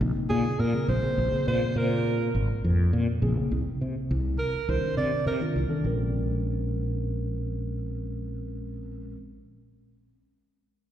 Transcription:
0.01 fretless electric bass A#1, tine electric piano C#3 A#3 C4 D#4
0.16 muted fretless electric bass stroke
0.30 fretless electric bass A#2, alto saxophone G#4
0.59 fretless electric bass A#2, alto saxophone A#4
0.74 tine electric piano C#3 A#3 C4 G#4, muted fretless electric bass stroke
0.88 fretless electric bass A#1, alto saxophone C5
1.02 tine electric piano C#3 A#3 C4 G#4, muted fretless electric bass stroke
1.18 fretless electric bass A#1
1.31 tine electric piano C#3 A#3 C4 G#4, muted fretless electric bass stroke
1.47 fretless electric bass A#2, alto saxophone C5
1.62 muted fretless electric bass stroke
1.76 fretless electric bass A#2, alto saxophone A#4
2.35 fretless electric bass G#1
2.50 muted fretless electric bass stroke
2.64 fretless electric bass F2
2.93 fretless electric bass A#2
3.22 fretless electric bass A#1, tine electric piano C#3 A#3 C4 G#4
3.36 tine electric piano C#3 A#3 C4 G#4
3.51 fretless electric bass C2
3.67 muted fretless electric bass stroke
3.81 fretless electric bass C3
4.11 fretless electric bass C2
4.39 alto saxophone A#4
4.54 muted fretless electric bass stroke
4.68 fretless electric bass C2, tine electric piano D#3 C4 D4 A#4, alto saxophone C5
4.97 fretless electric bass C3, alto saxophone D5
5.26 fretless electric bass C3, alto saxophone A#4
5.41 tine electric piano D#3 C4 D4 F4, muted fretless electric bass stroke
5.56 fretless electric bass C2
5.69 tine electric piano D#3 C4 D4 A4, muted fretless electric bass stroke
5.83 fretless electric bass A#1, tine electric piano G#3 C4 C#4 A#4

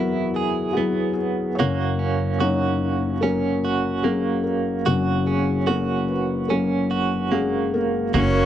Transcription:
Already playing: felt piano E2 F#3 B3 E4 F#4 G#4 A#4 B4 C#5 E5, clean electric guitar F#3 E4 G#4
0.34 felt piano G#4, clean electric guitar G#4
0.73 felt piano F#4
0.77 felt piano F#3 B3 E4 G#4, clean electric guitar B3
1.13 felt piano G#4
1.55 felt piano C#5
1.59 felt piano F#1 F#2 F#3 A#3 C#4 A#4, clean electric guitar A#3 F#4
1.99 clean electric guitar C#4
2.39 felt piano F#3 A#3 C#4 D#4 C#5, clean electric guitar F#4
3.21 felt piano F#3 A#3 C#4 A#4, clean electric guitar C#4
3.65 clean electric guitar F#4
4.02 felt piano F#3 A#3 C#4 G#4 A#4, clean electric guitar A#3
4.44 felt piano A#4
4.86 felt piano F#1 F#2 F#3 A#3 C#4 F#4, clean electric guitar F#4
4.90 felt piano C#4
5.26 clean electric guitar C#4, felt piano G#4
5.66 felt piano F#3 A#3 C#4 A#4, clean electric guitar F#4
6.08 felt piano B4
6.48 felt piano F#3 A#3 C#4 A#4, clean electric guitar C#4
6.52 felt piano A#4
6.91 clean electric guitar F#4
7.32 felt piano F#3 G#3 A#3 C#4 F#4 G#4, clean electric guitar A#3
7.74 felt piano A#3 A#4
8.14 upright bass F#1, felt piano F#1 F#2 F#3 A#3 C#4 F#4 A#4 C#5, clean electric guitar A#3 F#4, cello C#4, analog synth pad A#4 F#5 C#6

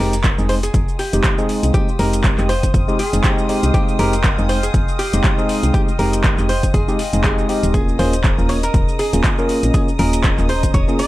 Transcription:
Already playing: analog synth pad D#5 F5 G5 C6, string machine D#6
0.00 fm bass F1, tine electric piano G#3 C4 D#4 G4, hollow-body jazz guitar A#4
0.13 closed hi-hat, cabasa
0.24 kick, clap, closed hi-hat, cabasa
0.38 fm bass F1, tine electric piano G#3 C4 D#4 G#4, cabasa
0.49 hollow-body jazz guitar C5, open hi-hat
0.63 hollow-body jazz guitar G#4, closed hi-hat, cabasa
0.74 fm bass F1, kick, closed hi-hat, cabasa
0.88 cabasa
0.99 hollow-body jazz guitar G4, open hi-hat
1.13 fm bass F1, tine electric piano G#3 C4 D#4 G4, closed hi-hat, cabasa
1.24 kick, clap, closed hi-hat, cabasa
1.38 tine electric piano G#3 C4 D#4 G#4, cabasa
1.49 open hi-hat
1.63 fm bass C2, closed hi-hat, cabasa
1.74 tine electric piano G#3 C4 D#4 G4, hollow-body jazz guitar G4, kick, closed hi-hat, cabasa
1.88 cabasa
1.99 fm bass F1, tine electric piano G#3 C4 D#4 G4, hollow-body jazz guitar A#4, open hi-hat
2.13 closed hi-hat, cabasa
2.24 kick, clap, closed hi-hat, cabasa
2.38 fm bass F1, tine electric piano G#3 C4 D#4 G4, clap, cabasa
2.49 hollow-body jazz guitar C5, open hi-hat
2.63 kick, closed hi-hat, cabasa
2.74 fm bass F1, kick, closed hi-hat, cabasa
2.88 tine electric piano G#3 C4 D#4 G4, cabasa
2.99 hollow-body jazz guitar G#4, open hi-hat
3.13 fm bass F1, tine electric piano G#3 C4 D#4 G#4, closed hi-hat, cabasa
3.24 tine electric piano G#3 C4 D#4 G4, kick, clap, closed hi-hat, cabasa
3.38 cabasa
3.49 tine electric piano G#3 C4 D#4 G4, open hi-hat
3.63 fm bass C2, closed hi-hat, cabasa
3.74 tine electric piano G#3 C4 D#4 G4, hollow-body jazz guitar G4, kick, closed hi-hat, cabasa
3.88 cabasa
3.99 fm bass F1, tine electric piano G#3 C4 D#4 G4, hollow-body jazz guitar A#4, open hi-hat
4.13 closed hi-hat, cabasa
4.24 kick, clap, closed hi-hat, cabasa
4.38 fm bass F1, tine electric piano G#3 C4 D#4 G#4, cabasa
4.49 hollow-body jazz guitar C5, open hi-hat
4.63 hollow-body jazz guitar G#4, closed hi-hat, cabasa
4.74 fm bass F1, kick, closed hi-hat, cabasa
4.88 cabasa
4.99 hollow-body jazz guitar G4, open hi-hat
5.13 fm bass F1, tine electric piano G#3 C4 D#4 G4, closed hi-hat, cabasa
5.24 kick, clap, closed hi-hat, cabasa
5.38 tine electric piano G#3 C4 D#4 G#4, cabasa
5.49 open hi-hat
5.63 fm bass C2, closed hi-hat, cabasa
5.74 tine electric piano G#3 C4 D#4 G4, hollow-body jazz guitar G4, kick, closed hi-hat, cabasa
5.88 cabasa
5.99 fm bass F1, tine electric piano G#3 C4 D#4 G4, hollow-body jazz guitar A#4, open hi-hat
6.13 closed hi-hat, cabasa
6.24 kick, clap, closed hi-hat, cabasa
6.38 fm bass F1, tine electric piano G#3 C4 D#4 G4, clap, cabasa
6.49 hollow-body jazz guitar C5, open hi-hat
6.63 kick, closed hi-hat, cabasa
6.74 fm bass F1, hollow-body jazz guitar G#4, kick, closed hi-hat, cabasa
6.88 tine electric piano G#3 C4 D#4 G4, cabasa
6.99 open hi-hat
7.13 fm bass F1, tine electric piano G#3 C4 D#4 G#4, closed hi-hat, cabasa
7.24 tine electric piano G#3 C4 D#4 G4, hollow-body jazz guitar G#4, kick, clap, closed hi-hat, cabasa
7.38 cabasa
7.49 tine electric piano G#3 C4 D#4 G4, open hi-hat
7.63 fm bass D#1, closed hi-hat, cabasa
7.74 tine electric piano A#3 C#4 F4 G#4, analog synth pad C#4 G#4 A#5, hollow-body jazz guitar G#4, string machine D#6, kick, closed hi-hat, cabasa
7.88 cabasa
7.99 fm bass D#1, tine electric piano A#3 C#4 F4 G#4, hollow-body jazz guitar C5, open hi-hat
8.13 closed hi-hat, cabasa
8.24 kick, clap, closed hi-hat, cabasa
8.38 fm bass D#1, tine electric piano A#3 C#4 F4 A#4, cabasa
8.49 hollow-body jazz guitar C#5, open hi-hat
8.63 hollow-body jazz guitar A#4, closed hi-hat, cabasa
8.74 fm bass D#1, kick, closed hi-hat, cabasa
8.88 cabasa
8.99 hollow-body jazz guitar G#4, open hi-hat
9.13 fm bass D#1, tine electric piano A#3 C#4 F4 G#4, closed hi-hat, cabasa
9.24 kick, clap, closed hi-hat, cabasa
9.38 tine electric piano A#3 C#4 F4 A#4, cabasa
9.49 open hi-hat
9.63 fm bass A#1, closed hi-hat, cabasa
9.74 tine electric piano A#3 C#4 F4 G#4, hollow-body jazz guitar G#4, kick, closed hi-hat, cabasa
9.88 cabasa
9.99 fm bass D#1, tine electric piano A#3 C#4 F4 G#4, hollow-body jazz guitar A#4, open hi-hat
10.13 closed hi-hat, cabasa
10.24 kick, clap, closed hi-hat, cabasa
10.38 fm bass D#1, tine electric piano A#3 C#4 F4 G#4, clap, cabasa
10.49 hollow-body jazz guitar C5, open hi-hat
10.63 kick, closed hi-hat, cabasa
10.74 fm bass D#1, hollow-body jazz guitar C#5, kick, closed hi-hat, cabasa
10.88 tine electric piano A#3 C#4 F4 G#4, cabasa
10.99 hollow-body jazz guitar D#5, open hi-hat

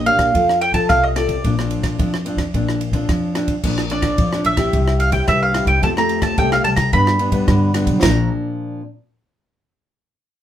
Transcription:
Already playing: upright bass A#1, nylon-string guitar A#2
0.06 nylon-string guitar A#3 D4 G4, mandolin F5, ride
0.17 upright bass A#1, kick, cross-stick, ride
0.34 upright bass F2, nylon-string guitar F3 C4 F4 A4, kick, ride
0.49 cross-stick
0.61 mandolin G5, ride
0.72 upright bass F3, nylon-string guitar C4 F4 A4, mandolin A5, kick, ride
0.89 upright bass C2, nylon-string guitar C3, mandolin F5, kick, cross-stick, ride
1.04 mandolin D#5
1.16 nylon-string guitar C4 F4 A4, mandolin D5, cross-stick, ride
1.29 kick, ride
1.44 upright bass A#1, nylon-string guitar A#2 F3 C4 D4, kick, ride
1.59 nylon-string guitar F3 C4 D4, cross-stick
1.71 ride
1.82 upright bass A#1, kick, cross-stick, ride
1.98 upright bass F2, nylon-string guitar F3 C4 D4, kick, ride
2.14 cross-stick
2.25 nylon-string guitar F3 C4 D4, ride
2.36 upright bass F2, kick, cross-stick, ride
2.54 upright bass A#1, nylon-string guitar A#2 F3 C4 D4, kick, ride
2.69 cross-stick
2.81 ride
2.91 upright bass A#2, nylon-string guitar F3 C4 D4, kick, ride
3.09 upright bass F2, nylon-string guitar F3, kick, cross-stick, ride
3.35 nylon-string guitar F3 C4 D4, cross-stick, ride
3.48 kick, ride
3.63 upright bass A#1, nylon-string guitar A#2 F3 C4 D4, kick, crash
3.78 cross-stick
3.90 nylon-string guitar F3 C4 D4, mandolin D5, ride
4.02 kick, cross-stick, ride
4.18 upright bass F2, nylon-string guitar F3, kick, ride
4.33 nylon-string guitar F3 C4 D4, cross-stick
4.44 upright bass A#1, mandolin E5, ride
4.57 nylon-string guitar C4 E4 G4, kick, cross-stick, ride
4.73 upright bass C2, nylon-string guitar C3, kick, ride
4.88 cross-stick
5.00 mandolin F5, ride
5.12 nylon-string guitar C4 E4 G4, mandolin G5, kick, ride
5.28 upright bass C2, nylon-string guitar G2, mandolin E5, kick, cross-stick, ride
5.43 mandolin F5
5.54 nylon-string guitar C4 E4 G4, cross-stick, ride
5.65 upright bass C2, mandolin G5, kick, ride
5.82 upright bass F2, nylon-string guitar F3 A3 C4 G4, mandolin A5, kick, ride
5.97 nylon-string guitar A3 C4 G4, mandolin A#5, cross-stick
6.09 ride
6.22 mandolin A5, kick, cross-stick, ride
6.38 upright bass C2, nylon-string guitar C3 A3 C4 G4, mandolin G5, kick, ride
6.52 mandolin F5, cross-stick
6.64 upright bass C2, mandolin A5, ride
6.76 mandolin A#5, kick, cross-stick, ride
6.93 nylon-string guitar G2 G3 B3 D4, upright bass G2, mandolin B5, kick, ride
7.07 cross-stick
7.19 nylon-string guitar G3 B3 D4, ride
7.32 nylon-string guitar G3 B3 D4, kick, ride
7.48 upright bass G2, nylon-string guitar D3, kick, cross-stick, ride
7.74 nylon-string guitar G3 B3 D4, cross-stick, ride
7.85 upright bass B1, kick, ride
8.02 upright bass A#1, nylon-string guitar A#2 F3 C4 D4, mandolin A#5, kick, snare, ride bell

